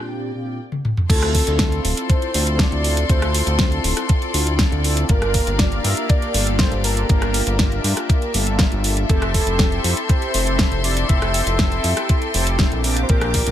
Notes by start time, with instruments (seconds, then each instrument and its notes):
Already playing: analog polysynth A#2 C4 D4 F4 G4, string section A#2 A#3 D5 G5, soft synth lead G4
0.34 analog polysynth A#2 C4 D4 F4 G4
0.72 high tom
0.85 mid tom
0.97 mid tom
1.09 analog synth bass D2, analog polysynth C4 E4 F4 A4, soft synth lead A4, string section A4 D5 C6, kick, closed hi-hat, crash
1.22 cross-stick, closed hi-hat
1.34 soft synth lead A4, kick, open hi-hat
1.47 analog synth bass D2, closed hi-hat
1.59 kick, snare, closed hi-hat
1.72 closed hi-hat
1.85 analog synth bass D1, open hi-hat
1.97 closed hi-hat
2.09 soft synth lead C5, kick, closed hi-hat
2.22 closed hi-hat
2.34 analog synth bass D2, analog polysynth C4 E4 F4 A4, open hi-hat
2.47 closed hi-hat
2.59 soft synth lead D5, kick, snare, closed hi-hat
2.72 analog synth bass D2, closed hi-hat
2.84 analog polysynth C4 E4 F4 A4, open hi-hat
2.97 closed hi-hat
3.09 analog synth bass D2, analog polysynth C4 E4 F4 A4, soft synth lead C5, kick, closed hi-hat
3.22 cross-stick, closed hi-hat
3.34 open hi-hat
3.47 analog synth bass D2, closed hi-hat
3.59 kick, snare, closed hi-hat
3.72 closed hi-hat
3.84 analog synth bass D1, open hi-hat
3.97 cross-stick, closed hi-hat
4.09 kick, closed hi-hat
4.22 closed hi-hat
4.34 analog synth bass D2, analog polysynth C4 E4 F4 A4, open hi-hat
4.47 closed hi-hat
4.59 kick, snare, closed hi-hat
4.72 analog synth bass D2, closed hi-hat
4.84 analog polysynth C4 E4 F4 A4, open hi-hat
4.97 closed hi-hat
5.09 analog synth bass G1, analog polysynth A#3 D4 F4 A#4, string section G4 F5, soft synth lead A#4, kick, closed hi-hat
5.22 cross-stick, closed hi-hat
5.34 kick, open hi-hat
5.47 analog synth bass G1, closed hi-hat
5.59 soft synth lead D5, kick, snare, closed hi-hat
5.72 closed hi-hat
5.84 analog synth bass G2, soft synth lead E5, open hi-hat
5.97 closed hi-hat
6.09 soft synth lead D5, kick, closed hi-hat
6.22 closed hi-hat
6.34 analog synth bass G1, analog polysynth A#3 D4 F4 A4, open hi-hat
6.47 closed hi-hat
6.59 soft synth lead C5, kick, snare, closed hi-hat
6.72 analog synth bass G1, closed hi-hat
6.84 analog polysynth A#3 D4 F4 A4, soft synth lead A#4, open hi-hat
6.97 closed hi-hat
7.09 analog synth bass G1, analog polysynth A#3 D4 F4 A#4, string section E5, kick, closed hi-hat
7.22 cross-stick, closed hi-hat
7.34 open hi-hat
7.47 analog synth bass G1, closed hi-hat
7.59 kick, snare, closed hi-hat
7.72 closed hi-hat
7.84 analog synth bass G2, open hi-hat
7.97 cross-stick, closed hi-hat
8.10 kick, closed hi-hat
8.22 closed hi-hat
8.34 analog synth bass G1, analog polysynth A#3 D4 F4 A4, open hi-hat
8.47 closed hi-hat
8.59 kick, snare, closed hi-hat
8.72 analog synth bass G1, closed hi-hat
8.84 open hi-hat
8.97 closed hi-hat
9.09 analog synth bass F1, analog polysynth C4 E4 G4 A4, soft synth lead A4, string section A4 C6, kick, closed hi-hat
9.22 cross-stick, closed hi-hat
9.34 soft synth lead A4, kick, open hi-hat
9.47 analog synth bass F1, closed hi-hat
9.59 kick, snare, closed hi-hat
9.72 closed hi-hat
9.84 analog synth bass F2, open hi-hat
9.97 closed hi-hat
10.09 soft synth lead C5, kick, closed hi-hat
10.22 closed hi-hat
10.34 analog synth bass F1, analog polysynth C4 E4 G4 A4, open hi-hat
10.47 closed hi-hat
10.59 kick, snare, closed hi-hat
10.72 analog synth bass F1, closed hi-hat
10.84 analog polysynth C4 E4 G4 A4, soft synth lead D5, open hi-hat
10.97 closed hi-hat
11.09 analog synth bass F1, analog polysynth C4 E4 G4 A4, soft synth lead E5, string section G5, kick, closed hi-hat
11.22 cross-stick, closed hi-hat
11.34 open hi-hat
11.47 analog synth bass F1, closed hi-hat
11.59 kick, snare, closed hi-hat
11.72 closed hi-hat
11.84 analog synth bass F2, open hi-hat
11.97 cross-stick, closed hi-hat
12.09 kick, closed hi-hat
12.22 closed hi-hat
12.34 analog synth bass F1, analog polysynth C4 E4 G4 A4, open hi-hat
12.47 closed hi-hat
12.59 kick, snare, closed hi-hat
12.72 analog synth bass A#1, closed hi-hat
12.84 analog polysynth C4 D4 F4 G4, string section A#4 G5 D6, open hi-hat
12.97 closed hi-hat
13.03 soft synth lead C5
13.08 analog synth bass A#1, analog polysynth C4 D4 F4 G4, soft synth lead A#4, kick, closed hi-hat
13.21 cross-stick, closed hi-hat
13.34 kick, open hi-hat
13.47 analog synth bass A#1, closed hi-hat